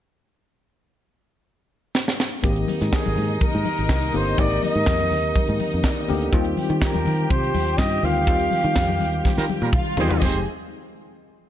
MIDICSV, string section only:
0, 0, Header, 1, 2, 480
1, 0, Start_track
1, 0, Tempo, 486224
1, 484, Time_signature, 4, 2, 24, 8
1, 11347, End_track
2, 0, Start_track
2, 0, Title_t, "String section"
2, 0, Program_c, 0, 48
2, 2415, Note_on_c, 0, 63, 72
2, 2417, Note_on_c, 0, 75, 86
2, 6211, Note_off_c, 0, 63, 0
2, 6212, Note_off_c, 0, 75, 0
2, 6254, Note_on_c, 0, 67, 81
2, 6255, Note_on_c, 0, 79, 80
2, 9569, Note_off_c, 0, 67, 0
2, 9569, Note_off_c, 0, 79, 0
2, 9606, Note_on_c, 0, 77, 88
2, 9613, Note_on_c, 0, 65, 81
2, 10070, Note_on_c, 0, 75, 79
2, 10075, Note_off_c, 0, 77, 0
2, 10077, Note_on_c, 0, 68, 82
2, 10079, Note_off_c, 0, 65, 0
2, 10079, Note_on_c, 0, 60, 79
2, 10300, Note_off_c, 0, 75, 0
2, 10303, Note_off_c, 0, 68, 0
2, 10305, Note_off_c, 0, 60, 0
2, 11347, End_track
0, 0, End_of_file